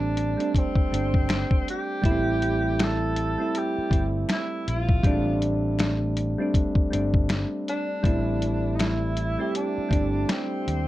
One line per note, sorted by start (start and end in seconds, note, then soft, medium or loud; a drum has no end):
0.00 0.35 A1 loud
0.00 0.23 G3 loud
0.00 0.23 A3 medium
0.00 0.24 C4 medium
0.00 0.24 D4 loud
0.00 0.60 D4 loud
0.17 closed hi-hat medium
0.37 0.86 G3 medium
0.37 0.87 A3 medium
0.37 0.87 C4 medium
0.37 0.88 D4 medium
0.37 closed hi-hat soft
0.55 1.68 C4 medium
0.55 kick medium
0.55 closed hi-hat medium
0.76 muted fretless electric bass stroke soft
0.76 kick loud
0.91 1.43 G1 medium
0.91 1.95 G3 medium
0.91 1.95 A3 medium
0.91 1.96 C4 medium
0.91 1.96 D4 medium
0.91 closed hi-hat medium
1.14 kick medium
1.29 finger snap medium
1.29 snare loud
1.29 closed hi-hat medium
1.51 kick medium
1.68 2.84 G4 loud
1.68 closed hi-hat medium
2.02 3.35 A1 loud
2.02 3.22 G3 loud
2.02 3.23 A3 medium
2.02 2.12 B3 medium
2.02 3.24 E4 loud
2.02 kick loud
2.02 closed hi-hat medium
2.11 3.26 C4 medium
2.42 closed hi-hat medium
2.79 3.59 A4 loud
2.79 finger snap medium
2.79 snare loud
2.79 closed hi-hat medium
3.16 closed hi-hat medium
3.38 3.86 G3 medium
3.38 3.87 A3 medium
3.38 3.87 C4 medium
3.38 3.88 E4 medium
3.55 4.06 G4 loud
3.55 closed hi-hat medium
3.78 muted fretless electric bass stroke soft
3.90 4.23 G1 medium
3.90 4.94 G3 medium
3.90 4.94 A3 medium
3.90 4.95 C4 medium
3.90 4.96 E4 medium
3.90 kick medium
3.90 closed hi-hat medium
4.29 4.70 E4 medium
4.29 finger snap medium
4.29 snare loud
4.29 closed hi-hat medium
4.67 4.99 A#1 medium
4.67 5.42 F4 loud
4.67 closed hi-hat medium
4.89 kick medium
5.03 6.35 A1 loud
5.03 6.23 G3 loud
5.03 5.12 G#3 medium
5.03 6.24 C4 medium
5.03 6.24 D4 loud
5.03 kick loud
5.03 closed hi-hat medium
5.11 6.27 A3 medium
5.42 closed hi-hat medium
5.79 finger snap medium
5.79 snare loud
5.79 closed hi-hat medium
6.17 closed hi-hat medium
6.38 6.86 G3 medium
6.38 6.87 A3 medium
6.38 6.87 C4 medium
6.38 6.88 D4 loud
6.54 kick medium
6.54 closed hi-hat medium
6.75 muted fretless electric bass stroke soft
6.75 kick loud
6.90 7.44 G1 medium
6.90 7.94 G3 medium
6.90 7.95 A3 medium
6.90 7.95 C4 medium
6.90 7.96 D4 medium
6.90 closed hi-hat medium
7.14 kick loud
7.29 finger snap medium
7.29 snare loud
7.29 closed hi-hat medium
7.68 8.77 D4 loud
7.68 closed hi-hat medium
8.03 9.35 A1 loud
8.03 9.22 G3 loud
8.03 9.23 A3 medium
8.03 9.24 C4 medium
8.03 9.24 E4 loud
8.03 kick loud
8.03 closed hi-hat medium
8.42 closed hi-hat medium
8.75 8.83 D#4 medium
8.75 finger snap medium
8.80 9.55 E4 loud
8.80 finger snap medium
8.80 snare loud
8.80 closed hi-hat medium
9.17 closed hi-hat medium
9.38 9.86 G3 medium
9.38 9.87 A3 medium
9.38 9.87 C4 medium
9.38 9.88 G4 medium
9.55 10.33 D4 loud
9.55 closed hi-hat medium
9.78 muted fretless electric bass stroke soft
9.89 10.23 G1 medium
9.89 10.88 G3 medium
9.89 10.88 A3 medium
9.89 10.88 C4 medium
9.89 kick medium
9.89 closed hi-hat medium
9.93 10.88 D4 medium
10.29 10.88 C4 medium
10.29 finger snap medium
10.29 snare loud
10.29 closed hi-hat medium
10.67 10.88 D#2 medium
10.67 closed hi-hat medium